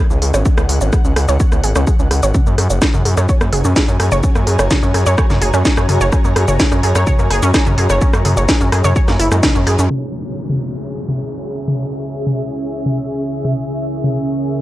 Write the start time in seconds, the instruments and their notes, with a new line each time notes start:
Already playing: ambient pad C#4 G#4 F#5
0.10 analog synth bass C#2, synth arpeggio sound C#4, shaker
0.22 analog synth bass C#2, synth arpeggio sound G#4, open hi-hat
0.34 analog synth bass G#1, synth arpeggio sound C#5, cross-stick, shaker
0.46 synth arpeggio sound C#4, kick, shaker
0.58 analog synth bass C#2, synth arpeggio sound B3, cross-stick, shaker
0.69 analog synth bass C#2, synth arpeggio sound G#4, open hi-hat
0.81 analog synth bass G#1, synth arpeggio sound C#5, shaker
0.93 synth arpeggio sound G#4, kick, cross-stick, shaker
1.05 analog synth bass C#2, synth arpeggio sound C#4, shaker
1.16 analog synth bass C#2, synth arpeggio sound G#4, cross-stick, open hi-hat
1.28 analog synth bass C#2, synth arpeggio sound C#5, shaker
1.40 synth arpeggio sound C#5, kick, shaker
1.52 analog synth bass C#2, synth arpeggio sound B3, cross-stick, shaker
1.64 analog synth bass G#1, synth arpeggio sound G#4, open hi-hat
1.76 analog synth bass C#2, synth arpeggio sound C#4, cross-stick, shaker
1.87 synth arpeggio sound G#4, kick, shaker
1.99 analog synth bass C#2, synth arpeggio sound C#4, shaker
2.11 analog synth bass C#2, synth arpeggio sound G#4, cross-stick, open hi-hat
2.23 analog synth bass G#1, synth arpeggio sound C#5, shaker
2.34 synth arpeggio sound C#4, ambient pad F#4, kick, mid tom, shaker
2.47 analog synth bass F#2, synth arpeggio sound A#3, shaker
2.53 ambient pad C#5
2.58 analog synth bass F#2, synth arpeggio sound G#4, ambient pad G#5, cross-stick, open hi-hat
2.70 analog synth bass F#1, synth arpeggio sound C#5, shaker
2.82 synth arpeggio sound G#4, kick, cross-stick, snare, shaker
2.86 ambient pad A#5
2.94 analog synth bass F#2, synth arpeggio sound C#4, mid tom, shaker
3.05 analog synth bass F#2, synth arpeggio sound G#4, open hi-hat
3.17 analog synth bass F#2, synth arpeggio sound C#5, cross-stick, shaker
3.29 synth arpeggio sound C#5, kick, shaker
3.41 analog synth bass F#2, synth arpeggio sound A#3, cross-stick, shaker
3.53 analog synth bass F#1, synth arpeggio sound G#4, open hi-hat, mid tom
3.65 analog synth bass F#2, synth arpeggio sound C#4, shaker
3.76 synth arpeggio sound G#4, kick, cross-stick, snare, shaker
3.88 analog synth bass F#2, synth arpeggio sound C#4, shaker
4.00 analog synth bass F#2, synth arpeggio sound G#4, cross-stick, open hi-hat
4.12 analog synth bass F#1, synth arpeggio sound C#5, mid tom, shaker
4.23 synth arpeggio sound C#4, kick, shaker
4.35 analog synth bass F#2, synth arpeggio sound A#3, cross-stick, shaker
4.47 analog synth bass F#2, synth arpeggio sound G#4, open hi-hat
4.59 analog synth bass F#1, synth arpeggio sound C#5, cross-stick, shaker
4.71 synth arpeggio sound G#4, kick, snare, mid tom, shaker
4.83 analog synth bass F#2, synth arpeggio sound C#4, shaker
4.94 analog synth bass F#2, synth arpeggio sound G#4, cross-stick, open hi-hat
5.06 analog synth bass F#2, synth arpeggio sound C#5, shaker
5.18 synth arpeggio sound C#5, kick, cross-stick, shaker
5.30 analog synth bass F#2, synth arpeggio sound A#3, snare, mid tom, shaker
5.42 analog synth bass F#1, synth arpeggio sound G#4, open hi-hat
5.54 analog synth bass F#2, synth arpeggio sound C#4, cross-stick, shaker
5.65 synth arpeggio sound G#4, kick, snare, shaker
5.77 analog synth bass F#2, synth arpeggio sound C#4, cross-stick, shaker
5.89 analog synth bass F#2, synth arpeggio sound G#4, open hi-hat, mid tom
6.01 analog synth bass F#1, synth arpeggio sound C#5, shaker
6.12 synth arpeggio sound C#4, kick, cross-stick, shaker
6.25 analog synth bass F#2, synth arpeggio sound A#3, shaker
6.36 analog synth bass F#2, synth arpeggio sound G#4, cross-stick, open hi-hat
6.48 analog synth bass F#1, synth arpeggio sound C#5, mid tom, shaker
6.60 synth arpeggio sound G#4, kick, snare, shaker
6.72 analog synth bass F#2, synth arpeggio sound C#4, cross-stick, shaker
6.83 analog synth bass F#2, synth arpeggio sound G#4, open hi-hat
6.95 analog synth bass F#2, synth arpeggio sound C#5, cross-stick, shaker
7.07 synth arpeggio sound C#5, kick, mid tom, shaker
7.19 analog synth bass F#2, synth arpeggio sound A#3, shaker
7.31 analog synth bass F#1, synth arpeggio sound G#4, cross-stick, open hi-hat
7.43 analog synth bass F#2, synth arpeggio sound C#4, shaker
7.54 synth arpeggio sound G#4, kick, cross-stick, snare, shaker
7.66 analog synth bass F#2, synth arpeggio sound C#4, mid tom, shaker
7.78 analog synth bass F#2, synth arpeggio sound G#4, open hi-hat
7.90 analog synth bass F#1, synth arpeggio sound C#5, cross-stick, shaker
8.01 synth arpeggio sound C#4, kick, shaker
8.13 analog synth bass F#2, synth arpeggio sound A#3, cross-stick, shaker
8.25 analog synth bass F#2, synth arpeggio sound G#4, open hi-hat, mid tom
8.37 analog synth bass F#1, synth arpeggio sound C#5, shaker
8.49 synth arpeggio sound G#4, kick, cross-stick, snare, shaker
8.61 analog synth bass F#2, synth arpeggio sound C#4, shaker
8.72 analog synth bass F#2, synth arpeggio sound G#4, cross-stick, open hi-hat
8.84 analog synth bass F#2, synth arpeggio sound C#5, mid tom, shaker
8.96 synth arpeggio sound C#5, kick, shaker
9.08 analog synth bass F#2, synth arpeggio sound A#3, cross-stick, snare, shaker
9.20 analog synth bass F#1, synth arpeggio sound E4, open hi-hat
9.32 analog synth bass F#2, synth arpeggio sound G#3, cross-stick, shaker
9.43 synth arpeggio sound D#4, kick, snare, mid tom, shaker
9.55 analog synth bass F#2, synth arpeggio sound C#4, shaker
9.67 analog synth bass F#2, synth arpeggio sound G#4, cross-stick, open hi-hat
9.79 analog synth bass F#2, synth arpeggio sound C#4, shaker
9.90 analog synth pad C#3 C#4 E4 G#4 G#5, ambient pad C#4, mid tom, crash, downlifter
10.12 ambient pad G#4
10.28 ambient pad E5
10.50 mid tom
11.09 mid tom
11.68 mid tom
12.27 mid tom
12.86 mid tom
13.45 mid tom
13.68 analog synth pad A#4
14.04 mid tom